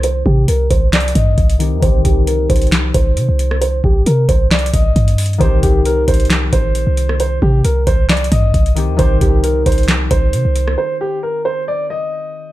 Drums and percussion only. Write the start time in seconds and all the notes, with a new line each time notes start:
0.03 closed hi-hat
0.26 kick
0.48 closed hi-hat
0.71 kick, closed hi-hat
0.93 snare, clap, closed hi-hat
1.00 closed hi-hat
1.08 closed hi-hat
1.15 kick, closed hi-hat
1.38 kick, closed hi-hat
1.50 closed hi-hat
1.60 closed hi-hat
1.83 kick, closed hi-hat
2.05 kick, closed hi-hat
2.27 closed hi-hat
2.50 kick, closed hi-hat
2.56 closed hi-hat
2.62 closed hi-hat
2.67 closed hi-hat
2.72 snare, clap, closed hi-hat
2.94 kick, closed hi-hat
3.17 closed hi-hat
3.39 closed hi-hat
3.51 cross-stick
3.62 closed hi-hat
3.84 kick
4.06 closed hi-hat
4.29 kick, closed hi-hat
4.51 snare, clap, closed hi-hat
4.59 closed hi-hat
4.66 closed hi-hat
4.74 kick, closed hi-hat
4.96 kick, closed hi-hat
5.08 closed hi-hat
5.18 closed hi-hat, open hi-hat
5.26 closed hi-hat
5.33 closed hi-hat
5.41 kick, closed hi-hat
5.63 kick, closed hi-hat
5.85 closed hi-hat
6.08 kick, closed hi-hat
6.14 closed hi-hat
6.20 closed hi-hat
6.25 closed hi-hat
6.30 snare, clap, closed hi-hat
6.53 kick, closed hi-hat
6.75 closed hi-hat
6.97 closed hi-hat
7.09 cross-stick
7.20 closed hi-hat
7.42 kick
7.65 closed hi-hat
7.87 kick, closed hi-hat
8.09 snare, clap, closed hi-hat
8.17 closed hi-hat
8.24 closed hi-hat
8.32 kick, closed hi-hat
8.54 kick, closed hi-hat
8.66 closed hi-hat
8.77 closed hi-hat
8.99 kick, closed hi-hat
9.21 kick, closed hi-hat
9.44 closed hi-hat
9.66 kick, closed hi-hat
9.72 closed hi-hat
9.78 closed hi-hat
9.83 closed hi-hat
9.88 snare, clap, closed hi-hat
10.11 kick, closed hi-hat
10.33 closed hi-hat
10.56 closed hi-hat
10.68 cross-stick